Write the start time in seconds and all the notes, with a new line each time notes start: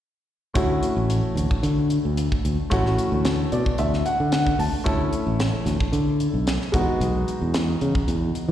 0.54 D2 A3 C#4 E4 F#4, kick, closed hi-hat
0.83 closed hi-hat
0.97 A1
1.10 closed hi-hat
1.23 muted fingered electric bass stroke
1.35 D2, closed hi-hat
1.51 muted fingered electric bass stroke, kick
1.63 D3, closed hi-hat
1.90 closed hi-hat
2.05 D2
2.17 closed hi-hat
2.32 kick
2.45 D2, closed hi-hat
2.70 A1 A3 C#4 E4 F#4, kick, closed hi-hat
2.86 snare
2.98 closed hi-hat
3.12 D2
3.25 snare, closed hi-hat
3.52 B2 D5, closed hi-hat
3.66 muted fingered electric bass stroke, kick
3.78 D2 E5, closed hi-hat
3.94 snare
4.06 F#5, closed hi-hat
4.20 D3
4.32 F#5, snare, closed hi-hat
4.47 kick
4.59 D2 A5, open hi-hat
4.73 muted fingered electric bass stroke
4.84 D2 A3 C#4 E4 A4, kick, closed hi-hat
5.13 closed hi-hat
5.27 A1
5.40 snare, closed hi-hat
5.53 muted fingered electric bass stroke
5.66 D2, snare, closed hi-hat
5.80 kick
5.92 D3, closed hi-hat
6.20 closed hi-hat
6.34 B1
6.47 snare, closed hi-hat
6.62 snare
6.72 E2 G#3 B3 D#4 F#4, kick, closed hi-hat
7.00 B1, closed hi-hat
7.28 closed hi-hat
7.41 E2
7.54 snare, closed hi-hat
7.81 C#3, closed hi-hat
7.95 muted fingered electric bass stroke, kick
8.08 E2, closed hi-hat
8.35 closed hi-hat
8.48 E3